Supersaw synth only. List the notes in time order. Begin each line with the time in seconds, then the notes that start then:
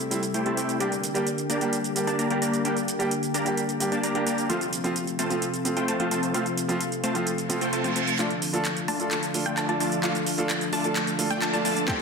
0.34 A3 E4 G4 C5 G5
0.46 A3 E4 G4 C5 A5
0.57 A3 E4 G4 C5 G5
0.80 A#3 D4 G4 D5 G5
1.50 A#3 D4 G4 D5 A#5
2.07 A#3 D4 G4 D5 A5
2.19 A#3 D4 G4 D5 A#5
2.30 A#3 D4 G4 D5 A#5
2.42 A#3 D4 G4 D5 A#5
2.65 A#3 D4 G4 D5 G5
3.34 A#3 D4 G4 D5 A#5
3.92 A#3 D4 G4 D5 A5
4.04 A#3 D4 G4 D5 A#5
4.15 A#3 D4 G4 D5 A#5
4.27 A#3 D4 G4 D5 A#5
4.50 A3 C4 F4 C5 F5
5.19 A3 C4 F4 C5 A5
5.77 A3 C4 F4 C5 G5
5.88 A3 C4 F4 C5 A5
6.00 A3 C4 F4 C5 A5
6.11 A3 C4 F4 C5 A5
6.34 A3 C4 F4 C5 F5
7.04 A3 C4 F4 C5 A5
7.61 A3 C4 F4 C5 G5
7.73 A3 C4 F4 C5 A5
7.84 A3 C4 F4 C5 A5
7.96 A3 C4 F4 C5 A5
8.19 A3 D4 F4 D5 F5
8.88 A3 D4 F4 D5 A5
9.46 A3 D4 F4 D5 G5
9.57 A3 D4 F4 D5 A5
9.69 A3 D4 F4 D5 A5
9.80 A3 D4 F4 D5 A5
10.04 A3 D4 F4 D5 F5
10.73 A3 D4 F4 D5 A5
11.30 A3 D4 F4 D5 G5
11.42 A3 D4 F4 D5 A5
11.54 A3 D4 F4 D5 A5
11.65 A3 D4 F4 D5 A5
11.88 A3 E4 G4 C5 G5